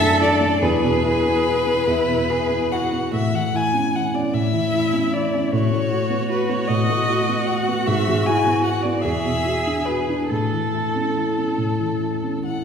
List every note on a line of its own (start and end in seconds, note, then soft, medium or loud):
0.00 0.58 F#2 medium
0.00 0.64 F#3 medium
0.00 0.33 A3 soft
0.00 0.13 D4 medium
0.00 0.62 A4 medium
0.00 0.22 E5 loud
0.21 0.53 D4 medium
0.21 0.64 D5 medium
0.41 0.62 A3 soft
0.62 1.86 E2 medium
0.62 1.77 G#4 medium
0.62 2.74 B4 medium
0.82 1.16 B2 soft
1.03 1.37 E4 soft
1.25 1.58 B3 soft
1.46 1.79 E4 soft
1.67 2.00 B3 soft
1.87 3.10 E2 soft
1.87 2.31 E4 medium
2.08 2.42 B2 soft
2.29 2.63 E4 soft
2.29 2.74 G#4 medium
2.50 2.84 B3 soft
2.71 3.05 E4 soft
2.71 3.14 F#4 soft
2.71 3.13 F#5 medium
2.92 3.13 B3 soft
3.13 4.32 A2 soft
3.13 3.36 E5 medium
3.34 3.67 E3 soft
3.34 3.57 F#5 medium
3.54 3.87 E4 soft
3.54 3.97 G#5 medium
3.73 4.06 C#4 soft
3.95 4.26 E4 soft
3.95 4.16 F#5 medium
4.14 4.45 C#4 soft
4.14 4.36 D5 medium
4.34 5.49 A2 soft
4.34 5.53 E4 medium
4.34 5.15 E5 medium
4.53 4.85 E3 soft
4.73 5.05 E4 soft
4.93 5.25 C#4 soft
5.13 5.45 E4 soft
5.13 5.53 D5 medium
5.34 5.53 C#4 soft
5.52 6.68 A2 soft
5.52 9.03 F#4 medium
5.52 6.29 C#5 medium
5.72 6.03 A3 soft
5.91 6.22 F#4 soft
6.10 6.41 B3 soft
6.29 6.61 F#4 soft
6.29 6.52 B4 medium
6.49 6.81 B3 soft
6.49 6.69 C#5 medium
6.68 7.84 A2 soft
6.68 7.49 D#5 medium
6.89 7.21 A3 soft
7.09 7.41 F#4 soft
7.29 7.60 B3 soft
7.47 7.80 F#4 soft
7.47 7.89 F#5 medium
7.68 7.88 B3 soft
7.87 9.00 G#2 medium
7.87 8.28 E5 medium
8.08 8.39 G#3 soft
8.26 8.58 E4 soft
8.26 8.64 G#5 medium
8.47 8.77 B3 soft
8.64 8.96 E4 soft
8.64 8.84 F#5 medium
8.83 9.04 B3 soft
8.83 9.03 D5 medium
9.01 10.27 E2 soft
9.01 10.31 G#4 medium
9.01 9.87 E5 medium
9.24 9.58 B2 soft
9.45 9.79 F#4 soft
9.67 10.01 D4 soft
9.85 10.22 F#4 soft
9.85 10.29 B4 medium
10.09 10.31 D4 soft
10.29 11.56 A2 soft
10.29 12.42 A4 medium
10.29 12.24 A4 soft
10.52 10.86 E3 soft
10.73 11.07 E4 soft
10.95 11.29 C#4 soft
11.16 11.50 E4 soft
11.38 11.72 C#4 soft
11.58 12.64 A2 soft
11.80 12.15 E3 soft
12.01 12.37 E4 soft
12.24 12.59 C#4 soft
12.45 12.64 E4 soft
12.45 12.64 F#5 soft